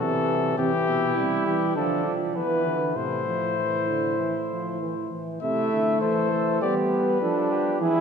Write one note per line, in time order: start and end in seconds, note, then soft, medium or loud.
0.00 0.57 C3 medium
0.00 0.57 E3 medium
0.00 0.57 A4 medium
0.58 0.71 C3 medium
0.58 1.16 E3 medium
0.58 1.72 E4 medium
0.58 1.45 G4 medium
0.88 1.18 B2 medium
1.17 1.45 C3 medium
1.17 1.75 G3 medium
1.46 1.77 E3 medium
1.46 1.75 G4 medium
1.76 2.07 D3 medium
1.76 2.14 F3 medium
1.76 2.37 D4 medium
1.76 2.14 A4 medium
2.05 2.36 F3 medium
2.35 2.64 E3 medium
2.35 2.98 E3 medium
2.35 2.96 B3 medium
2.35 2.98 B4 medium
2.65 2.95 D3 medium
2.96 5.07 A2 medium
2.96 3.26 C3 medium
2.96 5.08 E4 medium
2.96 5.12 C5 medium
3.26 3.59 F3 soft
3.57 3.87 E3 soft
3.88 4.19 D3 medium
4.19 4.33 E3 soft
4.50 4.80 F3 soft
4.81 4.94 E3 medium
5.12 5.41 E3 medium
5.41 5.70 C3 medium
5.41 6.28 A3 medium
5.41 5.98 E4 medium
5.41 5.98 E5 medium
5.73 6.04 D3 medium
6.01 6.61 E3 medium
6.01 6.63 A4 medium
6.01 6.60 C5 medium
6.31 6.64 A3 medium
6.61 7.20 G3 medium
6.61 7.21 B3 medium
6.61 7.21 G4 medium
6.61 6.75 D5 medium
6.90 7.78 B4 medium
7.21 7.82 F3 medium
7.21 7.80 D4 medium
7.21 7.50 A4 medium
7.51 7.80 G4 medium
7.79 8.01 E3 medium
7.79 8.01 E4 loud
7.79 8.01 G#4 medium
7.79 8.01 B4 medium